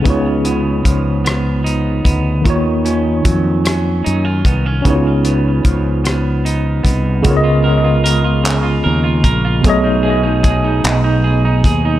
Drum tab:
HH |xxxxxx|xxxxxx|xxxxxx|x-xx-x|
CP |------|------|------|---x--|
SD |---r--|---r--|---r--|------|
BD |o-o--o|o-o--o|o-o--o|o----o|

HH |x-xx-x|
CP |---x--|
SD |------|
BD |o-o--o|